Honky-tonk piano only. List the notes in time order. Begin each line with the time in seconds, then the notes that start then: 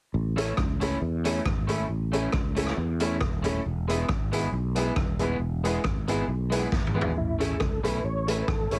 0.37 C#4 E4 A4
0.81 C#4 E4 A4
1.25 C#4 E4 A4
1.69 C#4 E4 A4
2.13 C#4 E4 A4
2.56 C#4 E4 A4
3.00 C#4 E4 A4
3.45 C#4 E4 A4
3.88 B3 E4 G#4
4.33 B3 E4 G#4
4.75 B3 E4 G#4
5.19 B3 E4 G#4
5.64 B3 E4 G#4
6.08 B3 E4 G#4
6.52 B3 E4 G#4
6.96 B3 E4 G#4
7.39 C#4 E4 A4
7.83 C#4 E4 A4
8.27 C#4 E4 A4
8.49 E4 A4
8.70 C#4 E4 A4